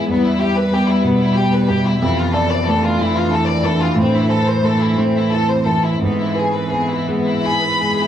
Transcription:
0.00 0.12 G#2 medium
0.00 0.12 G#3 medium
0.00 0.12 B3 medium
0.00 2.03 B3 medium
0.00 0.10 E4 medium
0.00 0.12 B4 medium
0.00 0.12 E5 medium
0.00 3.93 E5 medium
0.08 1.98 E2 medium
0.08 1.99 G3 medium
0.08 0.25 B3 medium
0.08 2.03 G4 medium
0.25 0.42 E4 medium
0.40 0.57 G4 medium
0.40 0.93 E5 medium
0.56 0.73 B4 medium
0.73 1.25 B3 medium
0.73 0.90 G4 medium
0.88 1.05 E4 medium
1.04 1.56 B2 medium
1.04 1.22 B3 medium
1.20 1.37 E4 medium
1.37 1.54 G4 medium
1.37 1.89 G4 medium
1.54 1.70 B4 medium
1.70 2.02 B2 medium
1.70 1.86 G4 medium
1.86 1.98 E4 medium
1.99 3.92 F2 medium
1.99 3.97 D4 medium
1.99 2.16 E4 medium
2.03 5.98 E3 medium
2.03 6.02 A4 medium
2.19 2.35 F4 medium
2.34 2.50 A4 medium
2.34 2.86 D5 medium
2.50 2.66 D5 medium
2.67 3.18 A3 medium
2.67 2.83 A4 medium
2.84 3.00 F4 medium
2.99 3.51 E3 medium
2.99 3.16 E4 medium
3.17 3.32 F4 medium
3.31 3.84 E4 medium
3.31 3.48 A4 medium
3.47 3.64 D5 medium
3.64 3.97 E3 medium
3.64 3.81 A4 medium
3.83 3.98 F4 medium
3.95 5.96 A2 medium
3.95 6.01 C4 medium
3.95 8.07 E5 medium
4.00 4.14 C4 medium
4.16 4.31 E4 medium
4.29 4.47 A4 medium
4.29 4.83 C5 medium
4.48 4.64 C5 medium
4.62 5.17 A3 medium
4.62 4.81 A4 medium
4.82 4.98 E4 medium
4.96 5.51 E3 medium
4.96 5.15 C4 medium
5.17 5.32 E4 medium
5.31 5.87 E4 medium
5.31 5.49 A4 medium
5.50 5.67 C5 medium
5.66 6.01 E3 medium
5.66 5.84 A4 medium
5.84 6.02 E4 medium
6.01 8.07 G#2 medium
6.01 7.91 E3 medium
6.01 8.07 B3 medium
6.01 6.19 B3 medium
6.01 8.07 B4 medium
6.20 6.38 E4 medium
6.35 6.56 G#4 medium
6.35 6.94 B4 medium
6.54 6.73 B4 medium
6.71 7.30 B3 medium
6.71 6.90 G#4 medium
6.91 7.09 E4 medium
7.08 7.66 G#3 medium
7.08 7.27 B3 medium
7.26 7.44 E4 medium
7.44 8.02 E4 soft
7.44 7.63 G#4 medium
7.44 8.07 B5 loud
7.63 7.81 B4 medium
7.81 8.07 G#3 medium
7.81 7.99 G#4 medium
8.01 8.07 E4 medium

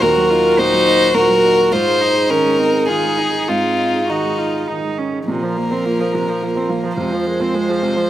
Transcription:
0.00 1.68 D#2 medium
0.00 1.74 F#4 medium
0.00 0.31 F#4 medium
0.00 0.10 A#4 medium
0.00 0.60 A#4 medium
0.17 0.39 F#3 soft
0.30 0.53 D#4 soft
0.30 0.60 F4 medium
0.45 0.67 A#4 soft
0.58 0.81 A#2 soft
0.58 1.14 D#4 medium
0.58 1.16 C5 medium
0.73 0.96 F#3 soft
0.87 1.09 D#4 soft
1.01 1.24 A#4 soft
1.14 1.38 A#2 soft
1.14 1.73 F#4 medium
1.14 1.74 A#4 medium
1.29 1.52 F#3 soft
1.43 1.66 D#4 soft
1.57 1.72 A#4 soft
1.72 3.44 G#2 medium
1.72 5.07 D#4 medium
1.72 2.02 F4 medium
1.72 2.31 C5 medium
1.86 2.10 G#3 soft
2.01 2.31 D#4 medium
2.01 2.24 D#4 soft
2.16 2.39 G#4 soft
2.29 2.53 D#3 soft
2.29 2.60 C#4 medium
2.29 2.88 A#4 medium
2.44 2.68 G#3 soft
2.59 2.90 C4 medium
2.59 2.83 D#4 soft
2.73 2.97 G#4 soft
2.88 3.13 D#3 soft
2.88 3.20 F4 medium
2.88 3.50 G#4 medium
3.03 3.27 G#3 soft
3.18 3.42 D#4 soft
3.18 3.50 D#4 soft
3.32 3.57 G#4 soft
3.48 5.24 G#2 soft
3.48 4.03 C4 soft
3.48 4.11 F4 medium
3.63 3.87 G#3 soft
3.78 4.03 D#4 soft
3.94 4.18 G#4 soft
4.08 4.33 D#3 soft
4.08 4.69 D#4 soft
4.08 4.40 F#4 medium
4.25 4.48 G#3 soft
4.38 4.63 D#4 soft
4.38 4.69 F4 soft
4.54 4.77 G#4 soft
4.68 4.93 D#3 soft
4.68 5.00 D#4 medium
4.83 5.07 G#3 soft
4.98 5.28 C#4 soft
4.98 5.22 D#4 soft
5.13 5.28 G#4 soft
5.28 6.94 A#2 medium
5.28 5.45 C3 medium
5.28 7.01 F3 medium
5.28 5.69 A#4 medium
5.28 6.94 A#4 soft
5.42 5.59 F3 soft
5.42 5.65 C5 soft
5.42 5.55 A#5 soft
5.57 5.73 A#3 medium
5.57 5.71 A#4 soft
5.57 5.83 A#5 soft
5.70 5.87 C4 soft
5.70 6.11 A#4 medium
5.70 5.94 C5 soft
5.84 6.02 A#3 medium
5.84 6.08 F4 soft
5.84 6.82 A#5 soft
6.00 6.16 F3 soft
6.00 6.22 C5 soft
6.12 6.30 C3 medium
6.12 6.36 F3 soft
6.12 6.54 A#4 medium
6.28 6.45 F3 soft
6.28 6.50 C5 soft
6.42 6.58 A#3 medium
6.42 6.64 F4 medium
6.55 6.72 C4 medium
6.55 7.00 A#4 medium
6.55 6.78 C5 soft
6.69 6.92 F3 soft
6.69 6.86 A#3 soft
6.69 8.10 F5 soft
6.83 6.98 F3 medium
6.83 6.98 C5 soft
6.83 7.00 A#5 soft
6.97 8.10 F2 medium
6.97 7.14 C3 medium
6.97 8.10 G#3 medium
6.97 7.39 F4 medium
6.97 8.10 C5 medium
7.11 7.28 F3 soft
7.11 7.24 C5 soft
7.11 7.35 C5 soft
7.26 7.42 G#3 medium
7.26 7.41 A#4 soft
7.26 7.53 C5 soft
7.40 7.56 C4 soft
7.40 7.81 F4 medium
7.40 7.63 C5 soft
7.54 7.71 G#3 medium
7.54 7.77 G#4 soft
7.54 8.10 C5 soft
7.68 7.84 F3 medium
7.68 7.91 C5 soft
7.82 7.99 C3 medium
7.82 8.05 G#3 soft
7.82 8.10 F4 medium
7.95 8.10 F3 soft
7.95 8.10 C5 soft

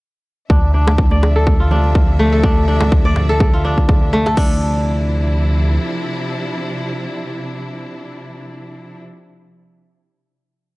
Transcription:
0.50 4.35 D2 medium
0.50 4.33 C3 medium
0.50 4.34 F3 medium
0.50 0.74 D4 medium
0.50 4.33 D4 medium
0.50 4.33 E5 medium
0.50 kick loud
0.50 high conga medium
0.74 1.71 D4 medium
0.74 open hi-hat medium
0.87 djembe slap medium
0.87 djembe tone medium
0.87 high conga medium
0.98 kick loud
1.11 2.22 D5 medium
1.11 high conga medium
1.23 djembe slap medium
1.23 djembe tone medium
1.36 2.32 A4 loud
1.47 kick loud
1.47 high conga medium
1.60 3.11 F4 medium
1.71 2.43 D4 medium
1.71 open hi-hat medium
1.71 high conga medium
1.71 low conga loud
1.71 shaker medium
1.84 high conga medium
1.95 kick loud
2.19 4.13 A3 medium
2.32 3.29 A4 medium
2.43 2.67 D4 medium
2.43 kick loud
2.43 high conga medium
2.68 3.64 D4 medium
2.68 open hi-hat medium
2.68 shaker medium
2.81 djembe slap medium
2.81 high conga loud
2.81 low conga medium
2.92 kick loud
3.04 4.16 D5 medium
3.04 high conga medium
3.16 open hi-hat medium
3.16 djembe slap medium
3.16 djembe tone medium
3.16 shaker medium
3.29 4.26 A4 loud
3.40 kick loud
3.40 high conga loud
3.40 djembe tone medium
3.53 5.05 F4 medium
3.64 4.37 D4 medium
3.64 open hi-hat medium
3.64 shaker medium
3.78 kick medium
3.78 shaker medium
3.88 kick loud
3.88 djembe tone medium
3.88 shaker soft
4.13 6.13 A3 medium
4.13 open hi-hat medium
4.13 shaker medium
4.26 5.58 A4 loud
4.26 djembe slap medium
4.26 shaker soft
4.37 5.78 D2 loud
4.37 9.00 C3 medium
4.37 9.00 F3 medium
4.37 6.05 D4 medium
4.37 9.00 D4 medium
4.37 9.00 E4 medium
4.37 kick loud
4.37 crash medium

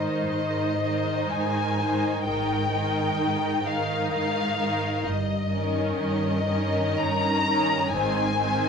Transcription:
0.00 0.17 G#1 soft
0.00 0.20 G#2 soft
0.00 0.79 D#3 soft
0.00 0.78 D#4 soft
0.00 0.80 D#4 soft
0.00 0.79 C5 soft
0.00 0.29 D#5 soft
0.30 1.21 G#2 soft
0.30 1.30 D#5 soft
0.80 1.79 D#3 soft
0.80 1.77 D#4 soft
0.80 1.79 D#4 soft
0.80 1.77 C5 soft
1.30 2.16 G#2 soft
1.30 2.26 G#5 soft
1.79 2.26 D#3 soft
1.79 2.25 D#4 soft
1.79 2.26 D#4 soft
1.79 2.25 C5 soft
2.26 3.07 G#1 soft
2.26 3.09 G#2 soft
2.26 2.71 D#3 soft
2.26 2.70 D#4 soft
2.26 2.72 D#4 soft
2.26 2.72 A#4 soft
2.26 3.64 G5 soft
2.71 3.64 D#3 soft
2.71 3.64 D#4 soft
2.71 3.65 A#4 soft
3.20 4.02 G#2 soft
3.65 4.58 D#3 soft
3.65 4.57 D#4 soft
3.65 4.58 D#4 soft
3.65 4.58 A#4 soft
3.65 4.11 F5 soft
4.12 4.96 G#2 soft
4.12 5.04 F5 medium
4.59 5.05 D#3 soft
4.59 5.06 D#4 soft
4.59 5.06 A#4 soft
5.05 5.86 G1 soft
5.05 5.89 G2 soft
5.05 5.98 D#5 soft
5.52 6.47 D#3 soft
5.52 6.47 C#4 soft
5.52 6.47 D#4 soft
5.52 6.47 A#4 soft
6.00 6.89 G2 soft
6.00 6.98 D#5 soft
6.48 7.47 D#3 soft
6.48 7.47 C#4 soft
6.48 7.47 D#4 soft
6.48 7.47 A#4 soft
6.99 7.84 G2 soft
6.99 7.94 A#5 medium
7.48 7.94 D#3 soft
7.48 7.94 C#4 soft
7.48 7.93 D#4 soft
7.48 7.93 A#4 soft
7.93 8.69 G#1 soft
7.93 8.69 G#2 soft
7.93 8.38 D#3 soft
7.93 8.38 C4 soft
7.93 8.38 D#4 soft
7.93 8.37 C5 soft
7.93 8.69 G#5 medium
8.38 8.69 D#3 soft
8.38 8.69 C4 soft
8.38 8.69 D#4 soft
8.38 8.69 C5 soft

